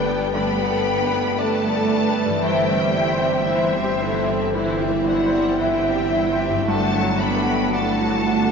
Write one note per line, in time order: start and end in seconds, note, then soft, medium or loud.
0.00 2.40 G1 medium
0.00 0.30 G2 medium
0.00 1.98 G2 medium
0.00 0.34 G3 medium
0.00 0.70 A3 soft
0.00 2.02 A3 medium
0.00 2.07 D4 medium
0.00 0.21 A4 medium
0.00 1.05 B4 medium
0.00 1.38 B4 medium
0.00 0.35 D5 medium
0.00 1.39 D5 medium
0.00 0.33 G5 loud
0.05 0.34 G3 medium
0.05 0.34 B3 medium
0.05 0.33 A4 medium
0.05 0.32 D5 medium
0.31 0.90 D3 soft
0.31 0.59 A3 medium
0.31 1.38 B3 medium
0.31 0.59 D4 medium
0.31 0.57 G4 medium
0.31 0.57 B4 medium
0.31 1.39 G5 medium
0.31 1.35 B5 loud
0.58 0.86 G3 medium
0.58 0.86 B3 medium
0.58 0.85 A4 medium
0.58 0.85 D5 medium
0.70 1.25 A3 medium
0.84 1.12 A3 medium
0.84 1.12 D4 medium
0.84 1.11 G4 medium
0.84 1.11 B4 medium
1.05 1.60 B4 medium
1.11 1.38 G3 medium
1.11 1.38 B3 medium
1.11 1.38 A4 medium
1.11 1.37 D5 medium
1.36 2.41 A3 medium
1.36 1.62 A3 medium
1.36 1.62 D4 medium
1.36 1.61 G4 medium
1.36 1.77 A4 medium
1.36 1.61 B4 medium
1.36 2.43 D5 medium
1.36 1.95 D5 medium
1.36 2.43 A5 loud
1.61 1.90 G3 medium
1.61 1.90 B3 medium
1.61 1.89 A4 medium
1.61 1.90 D5 medium
1.74 2.30 A4 medium
1.88 2.16 A3 medium
1.88 2.16 D4 medium
1.88 2.16 G4 medium
1.88 2.16 B4 medium
1.92 2.43 B4 medium
2.09 2.44 B4 soft
2.13 2.43 G3 medium
2.13 2.43 B3 medium
2.13 2.42 A4 medium
2.13 2.42 D5 medium
2.25 6.15 G2 medium
2.29 6.19 E3 medium
2.34 6.24 E4 medium
2.38 2.68 E3 medium
2.38 2.67 E4 medium
2.38 2.68 E4 medium
2.38 6.28 C5 medium
2.38 2.67 C5 medium
2.38 3.46 G5 loud
2.43 6.63 G1 medium
2.43 4.51 G2 medium
2.43 3.49 G3 medium
2.43 3.47 C5 medium
2.43 3.47 E5 medium
2.68 2.96 G3 medium
2.68 2.96 C4 medium
2.68 2.96 G4 medium
2.68 2.96 E5 medium
2.79 3.35 G3 medium
2.94 3.23 E3 medium
2.94 3.22 E4 medium
2.94 3.23 E4 medium
2.94 3.22 C5 medium
3.13 3.70 C5 medium
3.21 3.50 G3 medium
3.21 3.49 C4 medium
3.21 3.48 G4 medium
3.21 3.48 E5 medium
3.47 3.73 E3 medium
3.47 4.55 E3 medium
3.47 3.73 E4 medium
3.47 4.54 C5 medium
3.47 3.73 C5 medium
3.47 4.01 C5 medium
3.47 4.54 E5 medium
3.47 4.05 E5 medium
3.73 4.01 G3 medium
3.73 4.01 C4 medium
3.73 4.01 G4 medium
3.73 4.01 E5 medium
3.84 4.41 G4 medium
4.00 4.28 E3 medium
4.00 4.28 E4 medium
4.00 4.56 A4 medium
4.00 4.28 C5 medium
4.19 4.76 C5 medium
4.27 4.55 G3 medium
4.27 4.55 C4 medium
4.27 4.54 G4 medium
4.27 4.54 E5 medium
4.53 4.79 E3 medium
4.53 4.89 E3 medium
4.53 4.79 E4 medium
4.53 5.60 E4 medium
4.53 4.79 C5 medium
4.79 5.08 G3 medium
4.79 5.08 C4 medium
4.79 5.07 G4 medium
4.79 5.07 E5 medium
4.90 5.47 E3 soft
5.06 5.35 E3 medium
5.06 5.57 F#3 medium
5.06 5.33 E4 medium
5.06 5.35 E4 medium
5.06 5.33 C5 medium
5.06 5.56 D5 medium
5.06 5.57 F#5 medium
5.26 5.82 C5 medium
5.32 5.61 G3 medium
5.32 5.61 C4 medium
5.32 5.60 G4 medium
5.32 5.60 E5 medium
5.59 5.86 E3 medium
5.59 6.67 G3 medium
5.59 5.85 E4 medium
5.59 5.86 E4 medium
5.59 6.65 E4 medium
5.59 5.85 C5 medium
5.59 6.67 E5 medium
5.59 6.18 E5 medium
5.59 6.66 G5 medium
5.85 6.14 G3 medium
5.85 6.14 C4 medium
5.85 6.13 G4 medium
5.85 6.13 E5 medium
5.96 6.52 G4 medium
6.13 6.40 E3 medium
6.13 6.40 E4 medium
6.13 6.40 C5 medium
6.32 6.67 C5 medium
6.39 6.67 G3 medium
6.39 6.67 C4 medium
6.39 6.66 G4 medium
6.39 6.66 E5 medium
6.49 8.52 G2 medium
6.54 8.52 F#3 medium
6.59 8.52 D4 medium
6.63 6.92 A3 medium
6.63 6.91 F#4 medium
6.63 8.52 A4 medium
6.63 6.90 A4 medium
6.63 7.20 F#5 medium
6.63 7.18 A5 loud
6.67 8.52 G1 medium
6.67 8.52 G2 medium
6.67 7.19 A3 medium
6.67 7.73 D4 medium
6.67 6.92 D4 medium
6.92 7.20 F#3 medium
6.92 7.19 D4 medium
6.92 7.15 F#4 medium
6.92 7.20 F#4 medium
7.02 7.59 F#3 medium
7.16 7.73 B3 medium
7.16 7.42 F#4 medium
7.16 7.45 A4 medium
7.16 7.73 G5 loud
7.16 7.72 B5 loud
7.21 7.47 A3 medium
7.21 7.47 D4 medium
7.36 7.94 A4 medium
7.42 7.71 D4 medium
7.42 7.68 F#4 medium
7.47 7.73 F#3 medium
7.47 7.73 F#4 medium
7.69 7.98 D4 medium
7.69 7.96 F#4 medium
7.69 7.96 A4 medium
7.69 8.52 F#5 medium
7.73 8.52 A3 medium
7.73 7.98 A3 medium
7.73 8.27 E4 medium
7.73 8.30 D5 medium
7.73 8.52 A5 loud
7.97 8.27 F#3 medium
7.97 8.25 D4 medium
7.97 8.22 F#4 medium
7.97 8.27 F#4 medium
8.10 8.52 F#4 medium
8.23 8.52 A3 medium
8.23 8.52 D4 medium
8.23 8.50 F#4 medium
8.23 8.52 F#4 medium
8.23 8.52 A4 medium
8.45 8.52 A4 medium